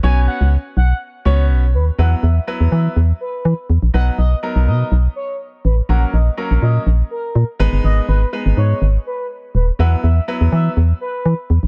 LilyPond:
<<
  \new Staff \with { instrumentName = "Analog synth lead" } { \time 4/4 \key b \major \tempo 4 = 123 gis''8 fis''8 r8 fis''8 r8 cis''8 r8 b'16 r16 | fis''8 e''8 r8 e''8 r8 b'8. r8. | fis''8 dis''8 r8 dis''8 r8 cis''8 r8 b'16 r16 | fis''8 dis''8 r8 dis''8 r8 ais'8. r8. |
dis''8 b'8 r8 cis''8 r8 b'8 r8 b'16 r16 | fis''8 e''8 r8 e''8 r8 b'8. r8. | }
  \new Staff \with { instrumentName = "Grand piano" } { \time 4/4 \key b \major <b cis' fis' cis''>4 r4. <b cis' fis' cis''>8. r8. | <fis b e' b'>8 r8 <fis b e' b'>4 r2 | <fis b dis' b'>8 r8 <fis b dis' ais'>4 r2 | <fis ais cis' ais'>8 r8 <fis ais cis' ais'>4 r4. <gis b dis' b'>8~ |
<gis b dis' b'>8 r8 <gis b dis' b'>4 r2 | <fis b e' b'>8 r8 <fis b e' b'>4 r2 | }
  \new Staff \with { instrumentName = "FM bass" } { \clef bass \time 4/4 \key b \major b,,8. cis,8 r16 b,,8 r8 cis,8 b,,8 dis,8 | e,8 e,8 r16 e,16 e8 e,8 r8 e16 r16 e,16 ais,,16 | b,,8 b,,8 r16 b,,16 b,8 b,,8 r4 a,,8 | ais,,8 ais,,8 r16 ais,,16 ais,8 ais,,8 r8 ais,16 r16 gis,,16 g,,16 |
gis,,8 gis,,8 r16 gis,,16 gis,8 gis,,8 r4 dis,,8 | e,8 e,8 r16 e,16 e8 e,8 r8 e16 r16 e,16 ais,,16 | }
>>